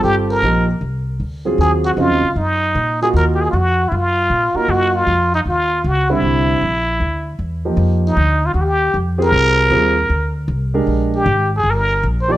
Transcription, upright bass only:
X:1
M:4/4
L:1/8
Q:"Swing" 1/4=155
K:Eblyd
V:1 name="Upright bass" clef=bass
G,,,2 B,,,2 C,,2 D,,2 | E,,2 (3F,, E,, _D,, _G,,2 B,,2 | E,,2 F,,2 _G,,2 B,, z | _G,,2 F,,2 E,,2 _D,,2 |
C,,2 B,,,2 D,,2 =E,,2 | [K:Fdor] F,,2 D,,2 E,,2 F,,2 | C,,2 E,,2 D,,2 C,,2 | B,,,2 A,,,2 G,,,2 B,,,2 |]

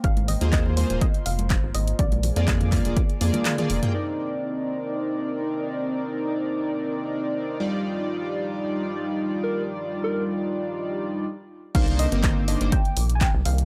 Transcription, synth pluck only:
X:1
M:4/4
L:1/16
Q:1/4=123
K:Cm
V:1 name="Synth pluck"
f2 e2 e2 c2 e2 f4 e2 | d12 z4 | z16 | z16 |
z16 | z16 | f2 e4 e2 g3- g/2 a/2 g2 f2 |]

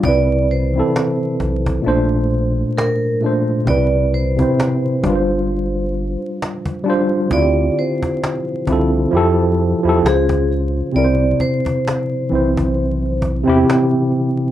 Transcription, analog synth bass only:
X:1
M:4/4
L:1/16
Q:"Swing 16ths" 1/4=66
K:C
V:1 name="Analog synth bass" clef=bass
C,,4 z2 B,,,2 _B,,,4 z4 | C,,4 z2 G,,,4- G,,, z4 z | D,,2 z4 C,,2 F,,3 E,, _D,,4 | C,,2 z4 B,,,4- B,,, E,, z4 |]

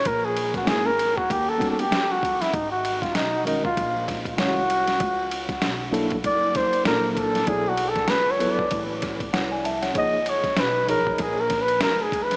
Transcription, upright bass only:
X:1
M:4/4
L:1/16
Q:"Swing 16ths" 1/4=97
K:Blyd
V:1 name="Upright bass" clef=bass
A,,,4 G,,,4 D,,4 C,,3 z | G,,,4 B,,,4 A,,,4 ^B,,,4 | C,,4 B,,,4 F,,,4 A,,,4 | B,,,4 C,,4 =A,,,4 ^B,,,4 |
C,,4 B,,,4 A,,,4 E,,,4 |]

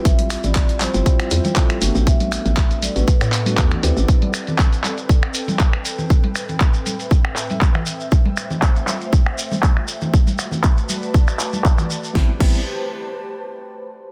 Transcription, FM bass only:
X:1
M:4/4
L:1/16
Q:"Swing 16ths" 1/4=119
K:Am
V:1 name="FM bass" clef=bass
A,,,2 z A,,,3 z G,,, z2 E,, z3 G,,, A,,,- | A,,,2 z A,,,3 z A,,, z A,,3 E,, z D,, A,,, | z16 | z16 |
z16 | z16 | A,,, z A,,,2 z12 |]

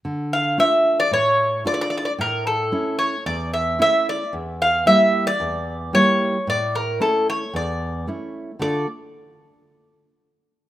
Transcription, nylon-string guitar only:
X:1
M:4/4
L:1/8
Q:1/4=112
K:Dm
V:1 name="Nylon-string guitar"
D,2 [A,DF]2 A,,2 [A,DF]2 | A,,2 [A,^CE]2 E,,2 [A,CE]2 | E,,2 [G,B,E]2 E,,2 [G,B,E]2 | A,,2 [A,^CE]2 E,,2 [A,CE]2 |
[D,A,DFA] z6 z |]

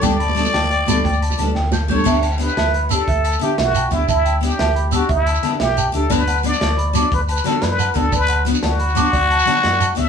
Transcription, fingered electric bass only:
X:1
M:12/8
L:1/8
Q:3/8=119
K:Edor
V:1 name="Fingered electric bass" clef=bass
D,,3 D,,2 D,, D,,2 D,, D,,3 | D,,3 D,,3 D,,2 D, B,,,2 D,, | D,,3 D,,3 D,,2 D, B,,,2 D,, | D,,3 D,,3 D,,2 D, F,,2 D,, |
D,,3 D,,3 D,,2 D, F,,2 D,, |]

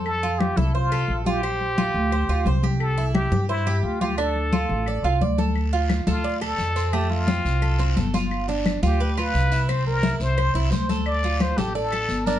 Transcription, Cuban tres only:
X:1
M:4/4
L:1/8
Q:1/4=174
K:F
V:1 name="Cuban tres"
A F2 A c A2 F | C2 F2 c F c G- | G E2 G c G2 F | D2 F2 d F d A- |
A F2 A d A2 C | A,2 C2 A C A F- | F D2 F =B F2 E | C2 E2 c E c A- |
A F2 A d A2 D |]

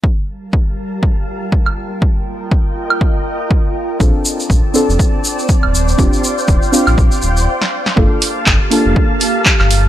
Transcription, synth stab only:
X:1
M:4/4
L:1/8
Q:"Swing 16ths" 1/4=121
K:Gm
V:1 name="Synth stab"
z8 | z8 | [CDFA]3 [CDFA]4 z | [CDFG]3 [CDFG]3 z2 |
[B,DFA]3 [B,DFA]4- [B,DFA] |]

